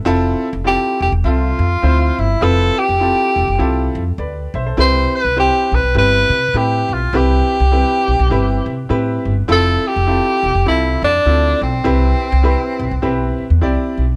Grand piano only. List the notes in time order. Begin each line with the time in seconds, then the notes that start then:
0.05 C4 E4 F4 A4
0.64 C4 E4 F4 A4
1.24 C4 F4 A4 E5
1.82 C4 E4 F4 C5
2.41 C4 E4 F4 B4
3.00 C4 E4 F4 A4
3.58 C4 E4 F4 A4
4.19 B4 D5
4.55 C5 E5
4.67 A4 C5
4.77 C4 E4 G4 B4
5.36 C4 E4 G4 C5
5.95 C4 E4 G4 B4
6.54 C4 E4 G4 B4
7.13 C4 E4 G4 B4
7.72 C4 E4 G4 B4
8.30 C4 E4 G4 B4
8.89 C4 E4 G4 B4
9.48 C4 E4 F4 A4
10.07 C4 E4 F4 A4
10.66 C4 E4 F4 A4
11.25 C4 E4 F4 A4
11.84 C4 E4 G4 B4
12.43 C4 E4 G4 B4
13.02 C4 E4 G4 B4
13.61 C4 E4 G4 D5